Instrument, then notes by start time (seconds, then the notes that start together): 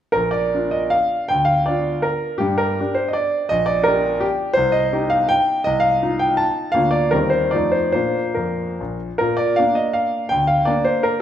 grand piano
0.12 A#1 A#4
0.31 D5
0.54 D4 F4
0.71 D#5
0.90 F5
1.28 D2 G5
1.45 F5
1.66 D4 F4 D5
2.02 A#4
2.38 G2 G4
2.58 A#4
2.80 D4 G4
2.95 C5
3.08 D#5
3.13 D5
3.49 A#1 D#5
3.66 D5
3.84 D4 G4 A#4
4.20 G4
4.54 C2 C5
4.72 D#5
4.93 D#4 G4
5.10 F5
5.29 G5
5.64 C2 D#5
5.80 F5
6.03 D#4 F4
6.19 G5
6.37 A5
6.72 D2 A#3 D4 F4 F5
6.91 D5
7.11 D#2 G3 C4 D#4 A#4
7.30 C5
7.51 F2 F3 A3 D5
7.55 D#4
7.72 C5
7.92 A#2 A#3 D4 C5
8.34 F2 A#4
8.80 A#1
9.18 A#2 A#4
9.37 D5
9.56 A#3 D4 F5
9.75 D#5
9.93 F5
10.29 D2 G5
10.47 F5
10.65 A#3 D4 D5
10.85 C5
11.03 A#4